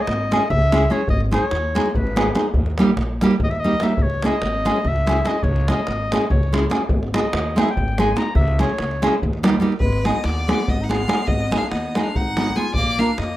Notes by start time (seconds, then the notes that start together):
0.02 D#5
0.07 G#1, davul high
0.31 G#3 C#4 E4 G#4, davul high
0.41 davul high
0.50 C#2 E5, davul low
0.62 davul high
0.72 G#3 C#4 E4 G#4, davul high
0.90 G#3 C#4 E4 G#4 C#5
1.08 G#1 D#5, davul low
1.20 davul high
1.31 G#3 B3 D#4 G#4 C#5, davul high
1.51 D#2, davul high
1.75 G#3 B3 D#4 G#4, davul high
1.86 davul high
1.91 C#5, davul low
1.95 G#1 B4
2.07 davul high
2.16 G#3 B3 D#4 G#4, davul high
2.35 G#3 B3 D#4 G#4, davul high
2.54 D#2, davul low
2.66 davul high
2.78 G3 A#3 D#4 G4, davul high
2.97 A#1, davul high
3.21 G3 A#3 D#4 G4, davul high
3.31 davul high
3.40 D#2, davul low
3.44 D#5
3.50 E5, davul high
3.59 D#5
3.64 G3 A#3 D#4 G4
3.71 davul high
3.80 G3 A#3 D#4 G4 E5, davul high
3.89 davul high
3.97 C#2, davul low
4.02 C#5
4.10 davul high
4.22 G#3 C#4 E4 G#4 D#5, davul high
4.42 G#1, davul high
4.65 G#3 C#4 E4 G#4, davul high
4.76 davul high
4.84 C#2 E5, davul low
4.96 davul high
5.07 G#3 C#4 E4 G#4, davul high
5.25 G#3 C#4 E4 G#4 D#5, davul high
5.43 C#2 C#5, davul low
5.56 davul high
5.68 G#3 C#4 E4 G#4 D#5, davul high
5.87 G#1, davul high
6.12 G#3 C#4 E4 G#4, davul high
6.22 davul high
6.30 C#2 C#5, davul low
6.43 davul high
6.53 G#3 C#4 E4 G#4, davul high
6.70 G#3 C#4 E4 G#4, davul high
6.89 G#1, davul low
7.03 davul high
7.14 G#3 B3 D#4 G#4 D#5, davul high
7.33 D#2, davul high
7.56 G#3 B3 D#4 G#4 G5, davul high
7.62 E5
7.69 G5, davul high
7.77 G#1, davul low
7.88 davul high
7.98 G#3 B3 D#4 G#4 G#5, davul high
8.16 G#3 B3 D#4 G#4 A#5, davul high
8.35 C#2 E5, davul low
8.48 davul high
8.59 G#3 C#4 E4 G#4 C#5, davul high
8.70 davul high
8.78 C#2, davul high
8.91 davul high
9.02 G#3 C#4 E4 G#4, davul high
9.22 D#2, davul low
9.33 davul high
9.43 G3 A#3 D#4 G4, davul high
9.60 G3 A#3 D#4 G4
9.72 davul high
9.80 G#1 G#3 B4, davul low
9.93 davul high
10.04 G#3 B3 D#4 G#4 D#5, davul high
10.23 D#2 B3 D5, davul high
10.48 G#3 B3 D#4 G#4, davul high
10.67 G#1 B3 D#5, davul low
10.82 D#4 F#5
10.89 G#3 B3 D#4 G#4 F5, davul high
11.08 G#3 B3 D#4 G#4, davul high
11.27 G#1 B3 D#5, davul low
11.40 davul high
11.51 G#3 B3 D#4 G#4, davul high
11.58 D4 F5
11.70 D#2 B3 D#5, davul high
11.95 G#3 B3 D#4 G#4, davul high
12.03 D4 F5
12.15 G#1 D#4 F#5, davul low
12.37 G#3 B3 D#4 G#4, davul high
12.56 G#3 B3 D#4 F4 G#4 G#5
12.74 A#1 A#3 D5, davul low
12.87 davul high
12.98 A#3 D4 F4 A#4 F5
13.12 D4 F5
13.18 F2 A#3 D#5, davul high